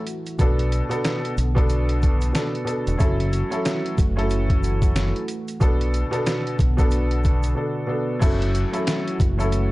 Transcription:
Already playing: analog synth pad E3 A3 F#4
0.07 closed hi-hat, shaker
0.26 closed hi-hat, shaker
0.38 fingered electric bass B1, grand piano B2 B3 D4 A4, analog synth pad D3 B3 A4, kick, closed hi-hat, shaker
0.59 closed hi-hat
0.72 closed hi-hat, shaker
0.89 grand piano B2 B3 D4 A4, closed hi-hat, shaker
1.04 snare, closed hi-hat, shaker
1.25 closed hi-hat
1.37 fingered electric bass B1, closed hi-hat, shaker
1.55 grand piano B2 B3 D4 A4, kick, closed hi-hat
1.70 closed hi-hat, shaker
1.89 closed hi-hat
2.02 kick, closed hi-hat, shaker
2.21 closed hi-hat, shaker
2.33 grand piano B2 B3 D4 A4, snare, closed hi-hat, shaker
2.55 closed hi-hat
2.65 grand piano B2 B3 D4 A4, closed hi-hat, shaker
2.87 fingered electric bass E1, closed hi-hat, shaker
2.98 fingered electric bass F#1, analog synth pad E3 A3 F#4, grand piano F#3 C#4 E4 A4, kick, closed hi-hat, shaker
3.20 closed hi-hat
3.33 closed hi-hat, shaker
3.50 grand piano F#3 C#4 E4 A4, closed hi-hat, shaker
3.65 snare, closed hi-hat, shaker
3.86 closed hi-hat
3.98 fingered electric bass F#1, kick, closed hi-hat, shaker
4.16 grand piano F#3 C#4 E4 A4, closed hi-hat
4.30 closed hi-hat, shaker
4.50 kick, closed hi-hat
4.63 closed hi-hat, shaker
4.82 kick, closed hi-hat, shaker
4.96 snare, closed hi-hat, shaker
5.16 closed hi-hat
5.28 closed hi-hat, shaker
5.48 closed hi-hat, shaker
5.60 fingered electric bass B1, grand piano B2 B3 D4 A4, analog synth pad D3 B3 A4, kick, closed hi-hat, shaker
5.81 closed hi-hat
5.94 closed hi-hat, shaker
6.11 grand piano B2 B3 D4 A4, closed hi-hat, shaker
6.26 snare, closed hi-hat, shaker
6.47 closed hi-hat
6.59 fingered electric bass B1, kick, closed hi-hat, shaker
6.77 grand piano B2 B3 D4 A4, kick, closed hi-hat, shaker
6.91 closed hi-hat, shaker
7.11 closed hi-hat
7.24 kick, closed hi-hat, shaker
7.43 closed hi-hat, shaker
7.55 grand piano B2 B3 D4 A4
7.87 grand piano B2 B3 D4 A4
8.19 fingered electric bass F#1, analog synth pad E3 A3 F#4, grand piano F#3 C#4 E4 A4, kick, closed hi-hat, crash, shaker
8.42 closed hi-hat
8.55 closed hi-hat, shaker
8.72 grand piano F#3 C#4 E4 A4, closed hi-hat, shaker
8.87 snare, closed hi-hat, shaker
9.08 closed hi-hat
9.20 fingered electric bass F#1, kick, closed hi-hat, shaker
9.38 grand piano F#3 C#4 E4 A4, closed hi-hat, shaker
9.52 closed hi-hat, shaker

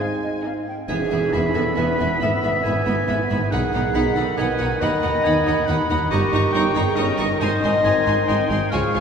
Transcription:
Already playing: bassoon G#3, french horn section C4 D#4, violin section G#5, oboe G#5
0.00 viola section C4 D#4, violin section G#4 D#5, clarinet C5
0.24 flute D#5
0.43 viola section C4 D#4, violin section G#4 D#5, clarinet C5, flute F5
0.68 flute G5
0.88 double bass section E1, tuba E1, cello section E2, viola section B3, bassoon B3, vibraphone G#4, clarinet G#4, violin section E5 G#5, flute E5, oboe G#5, tam-tam
1.11 double bass section E1, tuba E1, cello section E2, viola section B3, violin section E5 G#5
1.33 tuba E1, double bass section E1, cello section E2, french horn section B3 E4, viola section B3, violin section E5 G#5, oboe B5
1.54 double bass section E1, tuba E1, cello section E2, viola section B3, vibraphone A4, clarinet A4, violin section E5 G#5
1.76 double bass section E1, tuba E1, cello section E2, french horn section B3 E4, viola section B3, vibraphone B4, clarinet B4, violin section E5 G#5
1.99 tuba E1, double bass section E1, cello section E2, viola section B3, violin section E5 G#5
2.20 tuba G#1, double bass section G#1, cello section G#2, viola section B3, violin section E5 B5, clarinet E5, vibraphone E5
2.43 double bass section G#1, tuba G#1, cello section G#2, viola section B3, violin section E5 B5
2.63 double bass section G#1, tuba G#1, cello section G#2, french horn section B3 E4, viola section B3, violin section E5 B5, oboe G#5
2.86 double bass section G#1, tuba G#1, cello section G#2, viola section B3, violin section E5 B5
3.08 double bass section G#1, tuba G#1, cello section G#2, viola section B3, french horn section B3 E4, violin section E5 B5
3.30 double bass section G#1, tuba G#1, cello section G#2, viola section B3, violin section E5 B5
3.51 double bass section B1, tuba B1, cello section B2, bassoon D#3, viola section D#4, clarinet G#4, vibraphone G#4, oboe F#5, violin section F#5 B5, flute F#5
3.73 double bass section B1, tuba B1, cello section B2, viola section D#4, violin section F#5 B5
3.95 double bass section B1, tuba B1, cello section B2, french horn section B3 D#4, viola section D#4, violin section F#5 B5, oboe B5
4.16 double bass section B1, tuba B1, cello section B2, viola section D#4, vibraphone A4, clarinet A4, violin section F#5 B5
4.37 tuba B1, double bass section B1, cello section B2, french horn section B3 D#4, viola section D#4, vibraphone B4, clarinet B4, violin section F#5 B5, oboe G#5
4.59 tuba B1, double bass section B1, cello section B2, viola section D#4, violin section F#5 B5
4.80 tuba D#2, double bass section D#2, cello section D#2, viola section D#4, clarinet D#5, vibraphone D#5, oboe F#5, violin section F#5 B5, flute B5
5.03 tuba D#2, double bass section D#2, cello section D#2, viola section D#4, violin section F#5 B5
5.24 tuba D#2, double bass section D#2, cello section D#2, french horn section B3 D#4, viola section D#4, violin section F#5 B5, oboe G#5
5.46 tuba D#2, double bass section D#2, cello section D#2, viola section D#4, violin section F#5 B5
5.66 tuba D#2, double bass section D#2, cello section D#2, french horn section B3 D#4, viola section D#4, oboe F#5, violin section F#5 B5
5.89 tuba D#2, double bass section D#2, cello section D#2, viola section D#4, violin section F#5 B5
6.11 tuba G1, double bass section G1, cello section G2, bassoon D#3, viola section D#4, vibraphone G4, clarinet G4, oboe D#5, violin section A#5 C#6, flute C#6
6.32 tuba G1, double bass section G1, cello section G2, viola section D#4, violin section A#5 C#6
6.52 double bass section G1, tuba G1, cello section G2, french horn section C#4 D#4, viola section D#4, oboe G5, violin section A#5 C#6
6.75 tuba G1, double bass section G1, cello section G2, viola section D#4, vibraphone G#4, clarinet G#4, violin section A#5 C#6
6.96 tuba G1, double bass section G1, cello section G2, french horn section C#4 D#4, viola section D#4, clarinet A#4, vibraphone A#4, oboe D#5, violin section A#5 C#6
7.18 tuba G1, double bass section G1, cello section G2, viola section D#4, violin section A#5 C#6
7.40 tuba G#1, double bass section G#1, cello section G#2, viola section D#4, oboe C5, clarinet D#5, vibraphone D#5, violin section G#5 C6, flute C6
7.63 tuba G#1, double bass section G#1, cello section G#2, viola section D#4, violin section G#5 C6
7.84 tuba G#1, double bass section G#1, cello section G#2, french horn section C4 D#4, viola section D#4, oboe G#5, violin section G#5 C6
8.06 tuba G#1, double bass section G#1, cello section G#2, viola section D#4, violin section G#5 C6
8.27 tuba G#1, double bass section G#1, cello section G#2, french horn section C4 D#4, viola section D#4, oboe G5, violin section G#5 C6
8.50 double bass section G#1, tuba G#1, cello section G#2, viola section D#4, violin section G#5 C6
8.71 tuba C#2, double bass section C#2, cello section C#3, bassoon F3, viola section F4, clarinet G#4, vibraphone G#4, oboe F5, violin section G#5 C#6, flute C#6
8.94 tuba C#2, double bass section C#2, cello section C#3, viola section F4, violin section G#5 C#6

